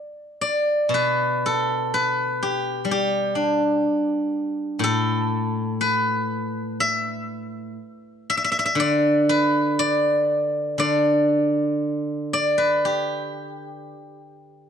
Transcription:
Already playing: D5
0.41 D5
0.89 B2
0.94 B4
1.46 A4
1.94 B4
2.43 G4
2.85 G3
2.91 G4
3.35 D4
4.79 A2
4.84 A4
5.81 B4
6.80 E5
8.30 E5
8.37 E5
8.44 E5
8.52 E5
8.59 E5
8.66 E5
8.75 D3
8.80 D5
9.29 B4
9.79 D5
10.78 D3 D5
12.33 D5
12.58 B4
12.85 G4

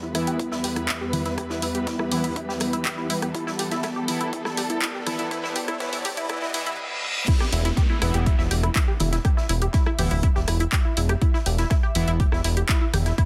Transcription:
Already playing: E2 E3 G3 B3 G4 A4 B4 E5, riser
0.00 E4 B5
0.15 E3 B3 E4, cross-stick, closed hi-hat, open hi-hat
0.27 G4, closed hi-hat
0.40 E4, kick, closed hi-hat
0.52 E4, snare
0.64 G4, snare, closed hi-hat, open hi-hat
0.76 E4, cross-stick, closed hi-hat
0.88 E4, kick, snare, clap, closed hi-hat
1.01 G4
1.13 E4, closed hi-hat, open hi-hat, low conga
1.26 E4, snare, closed hi-hat
1.38 G4, kick, cross-stick, closed hi-hat
1.50 E4, snare
1.62 E4, closed hi-hat, open hi-hat
1.75 G4, closed hi-hat
1.87 E4, kick, snare, closed hi-hat
1.99 E4, cross-stick
2.12 E3 B3 E4 G4, open hi-hat
2.24 E4, closed hi-hat
2.36 E4, kick, closed hi-hat
2.49 G4, snare
2.60 E4, cross-stick, closed hi-hat, open hi-hat
2.73 E4, closed hi-hat
2.85 G4, kick, snare, clap, closed hi-hat
2.98 E4
3.10 E4, closed hi-hat, open hi-hat
3.22 G4, cross-stick, closed hi-hat
3.35 E4 A4, kick, closed hi-hat
3.47 E4, snare
3.59 G4 D5, closed hi-hat, open hi-hat
3.71 E4, snare, closed hi-hat
3.83 E4, kick, cross-stick, snare, closed hi-hat
3.96 G4
4.08 E3 B3 E4, closed hi-hat, open hi-hat
4.21 E4, closed hi-hat
4.33 E4, kick, closed hi-hat
4.45 E4, cross-stick, snare
4.57 G4, snare, closed hi-hat, open hi-hat
4.70 E4, closed hi-hat
4.82 E4, kick, snare, clap, closed hi-hat
4.95 G4
5.07 E3 B3 E4, cross-stick, closed hi-hat, open hi-hat, low conga
5.18 E4, snare, closed hi-hat
5.31 E3 B3 E4, kick, closed hi-hat
5.44 E4, snare
5.55 G4, closed hi-hat, open hi-hat
5.68 E4, cross-stick, closed hi-hat
5.80 E3 B3 E4, kick, snare, closed hi-hat
5.93 E4, open hi-hat
6.04 G4, open hi-hat
6.17 E4, closed hi-hat
6.29 E3 B3 E4, kick, cross-stick, closed hi-hat, reverse cymbal
6.42 E4, snare
6.54 E3 B3 E4, closed hi-hat, open hi-hat
6.66 E4, closed hi-hat
7.28 E4, kick, closed hi-hat, crash, downlifter
7.40 G4, cross-stick, snare
7.50 E1 E4 E5, closed hi-hat, open hi-hat
7.65 E4, snare, closed hi-hat
7.77 G4, kick, snare, closed hi-hat
7.90 E4
8.02 E1 E3 B3 E4, cross-stick, closed hi-hat, open hi-hat
8.14 E1 G4, closed hi-hat
8.26 E4, kick, closed hi-hat
8.39 E1 E4, snare
8.51 E1 G4, snare, closed hi-hat, open hi-hat
8.63 E4, cross-stick, closed hi-hat
8.75 E4, kick, snare, clap, closed hi-hat
8.88 G4
9.00 E1 E4, closed hi-hat, open hi-hat, low conga
9.12 E4, snare, closed hi-hat
9.25 G4, kick, cross-stick, closed hi-hat
9.37 E4, snare
9.49 E1 E4, closed hi-hat, open hi-hat
9.62 G4, closed hi-hat
9.73 E4, kick, snare, closed hi-hat
9.86 E4, cross-stick
9.99 D1 E3 B3 E4 G4, open hi-hat
10.11 D1 E4, closed hi-hat
10.23 E4, kick, closed hi-hat
10.35 E1 G4, snare
10.48 E1 E4, cross-stick, closed hi-hat, open hi-hat
10.60 E4, closed hi-hat
10.72 G4, kick, snare, clap, closed hi-hat
10.85 E4
10.97 E1 E4, closed hi-hat, open hi-hat
11.09 G4, cross-stick, closed hi-hat
11.22 E4, kick, closed hi-hat
11.34 E4, snare
11.46 E1 G4, closed hi-hat, open hi-hat
11.58 E4, snare, closed hi-hat
11.70 E4, kick, cross-stick, snare, closed hi-hat
11.83 G4
11.95 E1 E3 B3 E4, closed hi-hat, open hi-hat
12.08 E1 E4, closed hi-hat
12.20 G4, kick, closed hi-hat
12.32 E1 E4, cross-stick, snare
12.44 E1 E4, snare, closed hi-hat, open hi-hat
12.57 G4, closed hi-hat
12.69 E4, kick, snare, clap, closed hi-hat
12.81 E4
12.94 E1 G4, cross-stick, closed hi-hat, open hi-hat, low conga
13.06 E4, snare, closed hi-hat
13.18 E4, kick, closed hi-hat

